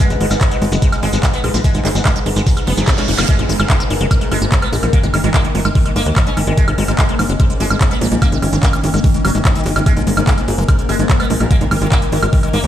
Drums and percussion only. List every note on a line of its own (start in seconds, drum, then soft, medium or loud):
0.10 closed hi-hat medium
0.10 shekere soft
0.21 open hi-hat loud
0.30 closed hi-hat medium
0.30 high woodblock soft
0.30 shekere medium
0.41 kick loud
0.41 clap loud
0.41 closed hi-hat medium
0.41 shekere medium
0.51 closed hi-hat medium
0.51 shekere soft
0.62 open hi-hat medium
0.72 closed hi-hat medium
0.72 shekere medium
0.82 kick loud
0.82 closed hi-hat medium
0.82 shekere medium
0.92 closed hi-hat medium
0.92 high woodblock medium
0.92 shekere soft
1.03 open hi-hat loud
1.13 closed hi-hat medium
1.13 shekere medium
1.23 kick loud
1.23 clap loud
1.23 closed hi-hat medium
1.23 shekere medium
1.33 closed hi-hat medium
1.33 shekere soft
1.44 open hi-hat loud
1.44 high woodblock soft
1.54 closed hi-hat medium
1.54 shekere medium
1.64 kick loud
1.64 closed hi-hat medium
1.64 shekere medium
1.74 closed hi-hat medium
1.74 shekere soft
1.85 clap medium
1.85 open hi-hat loud
1.95 closed hi-hat medium
1.95 shekere medium
2.05 kick loud
2.05 clap loud
2.05 closed hi-hat medium
2.05 high woodblock medium
2.05 shekere medium
2.16 closed hi-hat medium
2.16 shekere soft
2.26 open hi-hat loud
2.36 closed hi-hat medium
2.36 shekere medium
2.47 kick loud
2.47 open hi-hat medium
2.47 shekere medium
2.57 closed hi-hat medium
2.57 high woodblock soft
2.57 shekere soft
2.67 open hi-hat loud
2.77 closed hi-hat medium
2.77 shekere medium
2.87 kick loud
2.87 snare medium
2.87 clap loud
2.87 closed hi-hat medium
2.87 shekere medium
2.98 snare medium
2.98 closed hi-hat medium
2.98 shekere soft
3.08 open hi-hat loud
3.18 snare medium
3.18 closed hi-hat medium
3.18 high woodblock medium
3.18 shekere medium
3.29 kick loud
3.29 closed hi-hat medium
3.29 high woodblock soft
3.39 closed hi-hat medium
3.49 open hi-hat loud
3.60 closed hi-hat medium
3.60 high woodblock medium
3.70 kick loud
3.70 clap loud
3.70 closed hi-hat medium
3.80 closed hi-hat medium
3.80 high woodblock soft
3.90 open hi-hat loud
4.01 closed hi-hat medium
4.11 kick loud
4.11 closed hi-hat medium
4.11 high woodblock medium
4.21 closed hi-hat medium
4.32 open hi-hat loud
4.32 high woodblock soft
4.42 closed hi-hat medium
4.52 kick loud
4.52 clap loud
4.52 closed hi-hat medium
4.62 closed hi-hat medium
4.62 high woodblock medium
4.73 open hi-hat loud
4.83 closed hi-hat medium
4.83 high woodblock soft
4.93 kick loud
4.93 closed hi-hat medium
5.03 closed hi-hat medium
5.14 open hi-hat loud
5.14 high woodblock medium
5.24 closed hi-hat medium
5.34 kick loud
5.34 clap loud
5.34 closed hi-hat medium
5.34 high woodblock soft
5.45 closed hi-hat medium
5.55 open hi-hat loud
5.65 closed hi-hat medium
5.65 high woodblock medium
5.75 kick loud
5.75 open hi-hat medium
5.86 closed hi-hat medium
5.86 high woodblock soft
5.96 open hi-hat loud
6.06 closed hi-hat medium
6.16 kick loud
6.16 clap loud
6.16 closed hi-hat medium
6.16 high woodblock medium
6.27 closed hi-hat medium
6.37 open hi-hat loud
6.37 high woodblock soft
6.47 closed hi-hat medium
6.58 kick loud
6.58 closed hi-hat medium
6.68 closed hi-hat medium
6.68 high woodblock medium
6.78 open hi-hat loud
6.88 closed hi-hat medium
6.88 high woodblock soft
6.99 kick loud
6.99 clap loud
6.99 closed hi-hat medium
7.09 closed hi-hat medium
7.19 open hi-hat loud
7.19 high woodblock medium
7.29 closed hi-hat medium
7.40 kick loud
7.40 closed hi-hat medium
7.40 high woodblock soft
7.50 closed hi-hat medium
7.60 open hi-hat loud
7.71 closed hi-hat medium
7.71 high woodblock medium
7.81 kick loud
7.81 clap loud
7.81 closed hi-hat medium
7.91 closed hi-hat medium
7.91 high woodblock soft
8.01 open hi-hat loud
8.12 closed hi-hat medium
8.22 kick loud
8.22 closed hi-hat medium
8.22 high woodblock medium
8.32 closed hi-hat medium
8.42 open hi-hat loud
8.42 high woodblock soft
8.53 closed hi-hat medium
8.63 kick loud
8.63 clap loud
8.63 closed hi-hat medium
8.73 closed hi-hat medium
8.73 high woodblock medium
8.84 open hi-hat loud
8.94 closed hi-hat soft
8.94 high woodblock soft
9.04 kick loud
9.04 open hi-hat medium
9.14 closed hi-hat soft
9.25 open hi-hat loud
9.25 high woodblock medium
9.35 closed hi-hat medium
9.45 kick loud
9.45 clap loud
9.45 closed hi-hat medium
9.45 high woodblock soft
9.55 closed hi-hat soft
9.66 open hi-hat loud
9.76 closed hi-hat soft
9.76 high woodblock medium
9.86 kick loud
9.86 closed hi-hat medium
9.86 high woodblock soft
9.97 closed hi-hat soft
10.07 open hi-hat loud
10.17 closed hi-hat medium
10.17 high woodblock medium
10.27 kick loud
10.27 clap loud
10.27 closed hi-hat medium
10.38 closed hi-hat medium
10.38 high woodblock soft
10.48 open hi-hat loud
10.58 closed hi-hat medium
10.68 kick loud
10.68 closed hi-hat medium
10.68 high woodblock medium
10.79 closed hi-hat medium
10.89 open hi-hat loud
10.89 high woodblock soft
10.99 closed hi-hat medium
11.10 kick loud
11.10 clap loud
11.10 closed hi-hat medium
11.20 closed hi-hat soft
11.20 high woodblock medium
11.30 open hi-hat loud
11.40 closed hi-hat medium
11.40 high woodblock soft
11.51 kick loud
11.51 closed hi-hat medium
11.61 closed hi-hat medium
11.71 open hi-hat loud
11.71 high woodblock medium
11.82 closed hi-hat medium
11.92 kick loud
11.92 clap loud
11.92 closed hi-hat medium
11.92 high woodblock soft
12.02 closed hi-hat medium
12.12 open hi-hat loud
12.23 closed hi-hat soft
12.23 high woodblock medium
12.33 kick loud
12.33 open hi-hat medium
12.43 closed hi-hat medium
12.43 high woodblock soft
12.53 open hi-hat loud
12.64 closed hi-hat medium